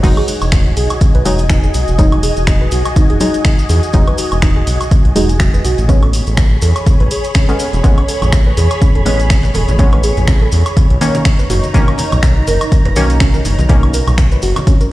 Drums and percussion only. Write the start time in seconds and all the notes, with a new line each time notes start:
0.04 kick, closed hi-hat, crash, cabasa
0.17 closed hi-hat, high woodblock
0.28 open hi-hat, cabasa
0.41 closed hi-hat, cabasa, high woodblock
0.52 finger snap, kick, closed hi-hat, cabasa
0.77 open hi-hat, cabasa
0.90 closed hi-hat, cabasa, high woodblock
1.01 kick, closed hi-hat, cabasa
1.15 closed hi-hat
1.25 open hi-hat, cabasa
1.38 closed hi-hat, cabasa
1.50 finger snap, kick, closed hi-hat, cabasa
1.64 cabasa
1.74 open hi-hat, cabasa
1.88 closed hi-hat, cabasa
1.99 kick, closed hi-hat, cabasa
2.12 closed hi-hat, high woodblock
2.23 open hi-hat, cabasa
2.37 closed hi-hat, cabasa
2.47 finger snap, kick, closed hi-hat, cabasa
2.71 open hi-hat, cabasa
2.85 closed hi-hat, cabasa, high woodblock
2.96 kick, closed hi-hat, cabasa
3.10 closed hi-hat
3.20 open hi-hat, cabasa
3.34 closed hi-hat, cabasa
3.45 finger snap, kick, closed hi-hat, cabasa
3.59 cabasa
3.69 open hi-hat, cabasa
3.83 closed hi-hat, cabasa
3.93 kick, closed hi-hat, cabasa
4.08 closed hi-hat, high woodblock
4.18 open hi-hat, cabasa
4.32 closed hi-hat, cabasa, high woodblock
4.42 finger snap, kick, closed hi-hat, cabasa
4.67 open hi-hat, cabasa
4.81 closed hi-hat, cabasa, high woodblock
4.91 kick, closed hi-hat, cabasa
5.05 closed hi-hat
5.16 open hi-hat, cabasa
5.29 closed hi-hat, cabasa
5.40 finger snap, kick, closed hi-hat, cabasa
5.54 cabasa
5.65 open hi-hat, cabasa
5.78 closed hi-hat, cabasa
5.89 kick, closed hi-hat, cabasa
6.03 closed hi-hat, high woodblock
6.13 open hi-hat, cabasa
6.27 closed hi-hat, cabasa
6.37 finger snap, kick, closed hi-hat, cabasa
6.62 open hi-hat, cabasa
6.76 closed hi-hat, cabasa, high woodblock
6.86 kick, closed hi-hat, cabasa
7.00 closed hi-hat
7.11 open hi-hat, cabasa
7.24 closed hi-hat, cabasa
7.35 finger snap, kick, closed hi-hat, cabasa
7.49 closed hi-hat, cabasa
7.59 open hi-hat, cabasa
7.73 closed hi-hat, cabasa
7.84 kick, closed hi-hat, cabasa
7.98 closed hi-hat, high woodblock
8.08 open hi-hat, cabasa
8.22 closed hi-hat, muted conga, high conga, low conga, cabasa, high woodblock
8.32 finger snap, kick, closed hi-hat, cabasa
8.57 open hi-hat, muted conga, cabasa
8.71 closed hi-hat, cabasa, high woodblock
8.82 kick, closed hi-hat, cabasa
8.95 closed hi-hat
9.05 open hi-hat, muted conga, cabasa
9.20 closed hi-hat, cabasa
9.30 finger snap, kick, closed hi-hat, cabasa
9.43 muted conga, cabasa
9.54 open hi-hat, high conga, low conga, cabasa
9.68 closed hi-hat, high conga, cabasa
9.79 kick, closed hi-hat, cabasa
9.92 closed hi-hat, muted conga, high woodblock
10.03 open hi-hat, cabasa
10.17 closed hi-hat, high conga, low conga, cabasa
10.28 finger snap, kick, closed hi-hat, muted conga, cabasa
10.52 open hi-hat, cabasa
10.66 closed hi-hat, cabasa, high woodblock
10.77 kick, closed hi-hat, muted conga, cabasa
10.90 closed hi-hat
11.01 open hi-hat, cabasa
11.15 closed hi-hat, muted conga, high conga, cabasa
11.25 finger snap, kick, closed hi-hat, cabasa
11.39 high conga, cabasa
11.50 open hi-hat, low conga, cabasa
11.63 closed hi-hat, muted conga, cabasa
11.74 kick, closed hi-hat, cabasa
11.88 closed hi-hat, high woodblock
11.98 open hi-hat, muted conga, cabasa
12.12 closed hi-hat, high conga, low conga, cabasa, high woodblock
12.23 finger snap, kick, closed hi-hat, cabasa
12.47 open hi-hat, muted conga, cabasa
12.61 closed hi-hat, cabasa, high woodblock
12.72 kick, closed hi-hat, cabasa
12.85 closed hi-hat, muted conga
12.96 open hi-hat, cabasa
13.10 closed hi-hat, cabasa
13.20 finger snap, kick, closed hi-hat, cabasa
13.34 muted conga, cabasa
13.45 open hi-hat, high conga, low conga, cabasa
13.59 closed hi-hat, high conga, cabasa
13.69 kick, closed hi-hat, muted conga, cabasa
13.83 closed hi-hat, high woodblock
13.94 open hi-hat, cabasa
14.07 closed hi-hat, high conga, low conga, cabasa, high woodblock
14.18 finger snap, kick, closed hi-hat, muted conga, cabasa
14.32 closed hi-hat, cabasa
14.42 open hi-hat, cabasa
14.56 closed hi-hat, muted conga, cabasa, high woodblock
14.67 kick, closed hi-hat, cabasa
14.81 closed hi-hat, cabasa